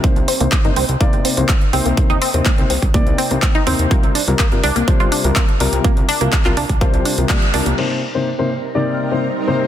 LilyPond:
<<
  \new Staff \with { instrumentName = "Ambient pad" } { \time 4/4 \key c \minor \tempo 4 = 124 r1 | r1 | r1 | r1 |
<g c' ees' bes'>1 | }
  \new Staff \with { instrumentName = "Synth arpeggio sound" } { \time 4/4 \key c \minor bes16 r16 c'16 bes16 r16 ees'16 c'16 r16 bes16 r16 c'16 r16 bes16 r16 c'16 bes16 | r16 ees'16 c'16 r16 bes16 r16 c'16 r16 bes16 r16 c'16 bes16 r16 ees'16 c'16 r16 | bes16 r16 d'16 r16 bes16 r16 d'16 bes16 r16 f'16 d'16 r16 bes16 r16 d'16 r16 | bes16 r16 d'16 bes16 r16 f'16 d'16 r16 bes16 r16 d'16 r16 bes16 r16 d'16 bes16 |
r1 | }
  \new Staff \with { instrumentName = "Grand piano" } { \time 4/4 \key c \minor <c bes c''>8 r16 <c bes ees' c''>16 r16 <c bes ees' c''>16 r8 <c bes ees' d''>8. <c bes ees' c''>16 r8 <c bes ees' c''>8 | <c bes ees' c''>8 r16 <c bes ees' c''>16 r16 <c bes ees' c''>16 r8 <c bes ees' d''>8. <c bes ees' c''>16 r8 <c bes ees' c''>8 | <c g f' bes'>8 r16 <c g f' bes'>16 r16 <c g f' bes'>16 r8 <c g f' c''>8. <c g f' bes'>16 r8 <c g f' bes'>8 | <c g f' bes'>8 r16 <c g f' bes'>16 r16 <c g f' bes'>16 r8 <c g f' c''>8. <c g f' bes'>16 <c g d''>16 r16 <c g f' bes'>8 |
<c bes ees' c''>8 r16 <c bes ees' c''>16 r16 <c bes ees' c''>16 r8 <c bes ees' d''>8. <c bes ees' c''>16 r8 <c bes ees' c''>8 | }
  \new Staff \with { instrumentName = "Analog synth bass" } { \clef bass \time 4/4 \key c \minor r16 c,16 r16 c,16 r16 g,,16 c,16 c,16 r16 g,,16 r16 c,16 r8 c,16 c,16 | r16 ees,16 r16 ees,16 r16 c,16 c,16 c,16 r16 c,16 r16 c,16 r8 ees,16 ees,16 | r16 c,16 r16 c,16 r16 g,,16 c,16 c,16 r16 g,,16 r16 c,16 r8 c,16 c,16 | r16 c,16 r16 c,16 r16 c,16 c,16 c,16 r16 c,16 r16 c,16 r8 c,16 c,16 |
r1 | }
  \new DrumStaff \with { instrumentName = "Drums" } \drummode { \time 4/4 <hh bd>16 hh16 hho16 hh16 <hc hh bd>16 hh16 hho16 hh16 <hh bd>16 hh16 hho16 hh16 <hc hh bd>16 hh16 hho16 hh16 | <hh bd>16 hh16 hho16 hh16 <hc hh bd>16 hh16 hho16 <hh bd>16 <hh bd>16 hh16 hho16 hh16 <hc hh bd>16 hh16 hho16 hh16 | <hh bd>16 hh16 hho16 hh16 <hc hh bd>16 hh16 hho16 hh16 <hh bd>16 hh16 hho16 hh16 <hc hh bd>16 hh16 hho16 hh16 | <hh bd>16 hh16 hho16 hh16 <hc hh bd>16 <hc hh>16 hho16 <hh bd>16 <hh bd>16 hh16 hho16 hh16 <hc hh bd>16 hh16 hho16 hh16 |
cymc4 r4 r4 r4 | }
>>